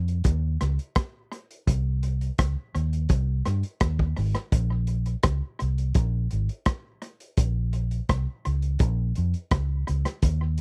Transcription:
0.00 0.21 F2 medium
0.08 closed hi-hat soft
0.24 0.56 D#2 medium
0.24 kick loud
0.24 closed hi-hat medium
0.61 0.77 C#2 medium
0.61 cross-stick medium
0.61 closed hi-hat medium
0.79 closed hi-hat soft
0.95 kick loud
0.95 cross-stick loud
0.95 closed hi-hat medium
1.32 closed hi-hat medium
1.51 closed hi-hat medium
1.67 2.29 C2 medium
1.67 kick loud
1.67 closed hi-hat medium
2.03 closed hi-hat medium
2.21 closed hi-hat medium
2.38 2.55 C#2 medium
2.38 kick loud
2.38 cross-stick loud
2.38 closed hi-hat medium
2.75 3.06 D#2 medium
2.75 closed hi-hat medium
2.93 closed hi-hat soft
3.09 3.41 C2 loud
3.09 kick loud
3.09 closed hi-hat medium
3.46 3.62 G2 medium
3.46 cross-stick medium
3.46 closed hi-hat medium
3.63 closed hi-hat soft
3.80 4.12 D#2 medium
3.80 kick loud
3.80 cross-stick loud
3.80 closed hi-hat medium
3.99 kick medium
4.17 4.33 G#1 medium
4.17 open hi-hat medium
4.35 cross-stick medium
4.35 closed hi-hat medium
4.52 5.14 A#1 medium
4.52 kick loud
4.52 closed hi-hat medium
4.87 closed hi-hat medium
5.06 closed hi-hat soft
5.23 5.40 C#2 medium
5.23 kick loud
5.23 cross-stick loud
5.23 closed hi-hat loud
5.60 5.92 C2 medium
5.60 closed hi-hat medium
5.78 closed hi-hat soft
5.94 6.27 A#1 loud
5.94 kick loud
5.94 closed hi-hat medium
6.31 6.48 G#1 medium
6.31 closed hi-hat medium
6.49 closed hi-hat soft
6.66 kick loud
6.66 cross-stick loud
6.66 closed hi-hat medium
7.02 closed hi-hat medium
7.20 closed hi-hat medium
7.37 8.00 A#1 medium
7.37 kick loud
7.37 closed hi-hat loud
7.73 closed hi-hat medium
7.91 closed hi-hat medium
8.09 8.25 C2 medium
8.09 kick loud
8.09 cross-stick loud
8.09 closed hi-hat medium
8.45 8.77 C#2 medium
8.45 closed hi-hat medium
8.62 closed hi-hat soft
8.79 9.12 A#1 loud
8.79 kick loud
8.79 closed hi-hat medium
9.15 9.33 F2 medium
9.15 closed hi-hat medium
9.34 closed hi-hat soft
9.51 9.83 C#2 medium
9.51 kick loud
9.51 cross-stick loud
9.51 closed hi-hat medium
9.88 10.04 C#2 medium
9.88 closed hi-hat medium
10.05 cross-stick medium
10.05 closed hi-hat medium
10.22 10.61 D#2 medium
10.22 kick loud
10.22 closed hi-hat medium
10.58 closed hi-hat medium

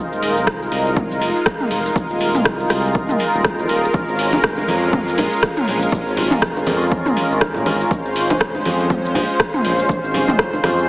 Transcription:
0.00 10.89 G#3 medium
0.00 3.90 D#4 medium
0.00 10.89 F4 medium
0.00 7.87 A#4 medium
0.11 0.38 D#1 medium
0.11 shaker medium
0.23 open hi-hat medium
0.23 shaker medium
0.37 0.67 C2 medium
0.37 shaker loud
0.47 kick loud
0.47 cross-stick loud
0.47 shaker medium
0.62 shaker medium
0.72 1.23 C2 medium
0.72 open hi-hat medium
0.72 shaker medium
0.87 shaker medium
0.97 kick loud
0.97 mid tom medium
0.97 shaker medium
1.11 shaker medium
1.21 1.31 F1 medium
1.21 open hi-hat medium
1.21 shaker medium
1.36 shaker medium
1.46 kick loud
1.46 cross-stick loud
1.46 shaker loud
1.60 mid tom medium
1.60 shaker medium
1.71 1.89 F1 medium
1.71 open hi-hat medium
1.71 shaker medium
1.86 shaker loud
1.96 2.06 F1 medium
1.96 kick loud
1.96 shaker loud
2.10 2.37 D#1 medium
2.10 shaker medium
2.21 open hi-hat medium
2.21 shaker medium
2.35 2.65 C2 medium
2.35 mid tom medium
2.35 shaker medium
2.45 kick loud
2.45 cross-stick loud
2.45 shaker medium
2.60 shaker medium
2.70 3.15 C2 medium
2.70 cross-stick medium
2.70 open hi-hat medium
2.70 shaker medium
2.85 shaker medium
2.95 kick loud
2.95 shaker medium
3.09 mid tom medium
3.09 shaker loud
3.20 open hi-hat medium
3.20 shaker medium
3.34 3.60 D#1 medium
3.34 shaker medium
3.45 kick loud
3.45 cross-stick loud
3.45 shaker medium
3.59 3.66 F2 loud
3.59 shaker medium
3.69 3.88 D#1 loud
3.69 open hi-hat medium
3.69 shaker medium
3.84 shaker loud
3.93 4.04 A#1 medium
3.93 10.89 C#4 medium
3.93 kick loud
3.93 djembe tone medium
3.93 high conga medium
3.93 shaker medium
4.08 4.34 G#1 medium
4.08 shaker medium
4.19 open hi-hat medium
4.19 shaker medium
4.33 4.63 F1 medium
4.33 djembe slap medium
4.33 high conga medium
4.33 djembe bass medium
4.33 shaker medium
4.44 kick loud
4.44 cross-stick loud
4.44 shaker medium
4.58 djembe tone medium
4.58 shaker medium
4.68 5.20 F2 medium
4.68 open hi-hat medium
4.68 high conga loud
4.68 shaker medium
4.83 shaker medium
4.93 kick loud
4.93 mid tom medium
4.93 high conga medium
4.93 shaker medium
5.08 shaker medium
5.18 5.28 A#1 medium
5.18 open hi-hat medium
5.18 djembe tone medium
5.18 low conga medium
5.18 shaker medium
5.33 shaker soft
5.43 kick loud
5.43 cross-stick loud
5.43 shaker loud
5.57 mid tom medium
5.57 shaker medium
5.68 5.86 A#1 medium
5.68 open hi-hat medium
5.68 shaker medium
5.82 shaker loud
5.92 6.02 A#1 loud
5.92 kick loud
5.92 djembe tone medium
5.92 high conga medium
5.92 shaker medium
6.07 6.33 G#1 medium
6.07 shaker soft
6.17 open hi-hat medium
6.17 low conga medium
6.17 shaker medium
6.31 6.62 F1 medium
6.31 mid tom medium
6.31 djembe slap medium
6.31 high conga medium
6.31 djembe bass medium
6.31 shaker medium
6.42 kick loud
6.42 cross-stick loud
6.42 shaker medium
6.57 djembe tone medium
6.57 shaker medium
6.67 7.11 F2 medium
6.67 open hi-hat medium
6.67 high conga loud
6.67 low conga medium
6.67 shaker medium
6.82 shaker soft
6.91 kick loud
6.91 high conga medium
6.91 shaker medium
7.06 mid tom medium
7.06 shaker medium
7.17 open hi-hat medium
7.17 high conga medium
7.17 shaker medium
7.31 7.57 G#1 medium
7.31 shaker soft
7.41 kick loud
7.41 cross-stick loud
7.41 djembe bass loud
7.41 shaker medium
7.54 7.63 A#2 loud
7.54 low conga medium
7.54 shaker medium
7.66 7.84 G#1 loud
7.66 open hi-hat medium
7.66 high conga medium
7.66 djembe tone medium
7.66 shaker medium
7.81 shaker medium
7.91 8.01 A#1 loud
7.91 10.89 C5 loud
7.91 kick loud
7.91 high conga medium
7.91 djembe tone medium
7.91 shaker medium
8.05 8.31 G#1 medium
8.05 shaker medium
8.16 open hi-hat medium
8.16 shaker soft
8.30 8.60 F1 medium
8.30 djembe slap medium
8.30 high conga medium
8.30 djembe bass loud
8.30 shaker medium
8.41 kick loud
8.41 cross-stick loud
8.41 shaker medium
8.55 djembe tone medium
8.55 shaker medium
8.65 9.17 F2 medium
8.65 open hi-hat medium
8.65 high conga medium
8.65 shaker medium
8.80 shaker medium
8.90 kick loud
8.90 mid tom medium
8.90 high conga medium
8.90 shaker medium
9.05 shaker medium
9.15 9.25 A#1 medium
9.15 open hi-hat medium
9.15 djembe tone medium
9.15 low conga loud
9.15 shaker soft
9.30 shaker soft
9.40 kick loud
9.40 cross-stick loud
9.40 shaker medium
9.54 mid tom medium
9.54 shaker medium
9.65 9.83 A#1 medium
9.65 open hi-hat medium
9.65 shaker soft
9.79 shaker medium
9.89 9.99 A#1 medium
9.89 kick loud
9.89 djembe tone medium
9.89 high conga medium
9.89 shaker medium
10.04 10.30 G#1 medium
10.04 shaker medium
10.14 open hi-hat medium
10.14 low conga medium
10.14 shaker soft
10.27 10.59 F1 medium
10.27 mid tom medium
10.27 djembe slap medium
10.27 high conga medium
10.27 djembe bass medium
10.27 shaker medium
10.39 kick loud
10.39 cross-stick loud
10.39 shaker medium
10.53 djembe tone medium
10.53 shaker medium
10.64 10.89 F2 medium
10.64 cross-stick medium
10.64 open hi-hat medium
10.64 high conga medium
10.64 low conga medium
10.64 shaker medium
10.79 shaker medium

